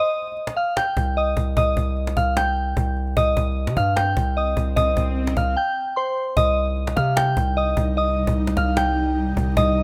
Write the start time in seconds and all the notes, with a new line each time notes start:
Already playing: D#5 D#6
0.17 cajon slap
0.22 cajon slap
0.27 cajon slap
0.32 cajon slap
0.37 cajon slap
0.47 cajon slap
0.57 F5 F6, cajon slap
0.77 G5 G6, cajon slap
0.97 C2, cajon bass
1.17 D#5 D#6, cajon slap
1.37 C2, cajon bass
1.57 C2 D#5 D#6, cajon bass
1.77 C2, cajon bass
1.83 cajon slap
1.90 cajon slap
1.97 cajon slap
2.07 cajon slap
2.17 C2 F5 F6, cajon bass
2.37 G5 G6, cajon slap
2.57 cajon slap
2.77 C2, cajon bass
2.97 cajon slap
3.07 cajon slap
3.17 C2 D#5 D#6, cajon bass, swell
3.37 C2, cajon bass
3.47 cajon slap
3.52 cajon slap
3.57 cajon slap
3.67 C3, cajon slap
3.77 G2 F5 F6, cajon bass
3.96 G5 G6, cajon slap
4.17 C2, cajon bass
4.37 D#5 D#6, cajon slap
4.57 C2, cajon bass
4.76 C2 D#5 D#6, cajon bass
4.97 C2, cajon bass
5.17 cajon slap
5.27 cajon slap
5.37 C2 F5 F6, cajon bass
5.57 G5 G6
5.96 C5 C6
6.37 C2 C3 G3 D#4 D#5 D#6, cajon bass
6.57 cajon slap
6.67 cajon slap
6.77 cajon slap
6.87 cajon slap
6.96 C3 F5 F6, cajon bass, cajon slap
7.16 G5 G6, cajon slap
7.37 C2, cajon bass
7.57 D#5 D#6, cajon slap
7.77 C2, cajon bass
7.97 D#5 D#6, cajon slap
8.17 cajon slap
8.23 C2, cajon bass, cajon slap
8.30 cajon slap
8.37 cajon slap
8.47 cajon slap
8.57 C2 F5 F6, cajon bass, cajon slap
8.72 cajon slap
8.77 G5 G6, cajon slap
8.97 cajon slap
9.17 cajon slap
9.22 cajon slap
9.27 cajon slap
9.32 cajon slap
9.37 C2, cajon bass
9.42 cajon slap
9.47 cajon slap
9.52 cajon slap
9.57 C2 D#5 D#6, cajon bass
9.77 cajon slap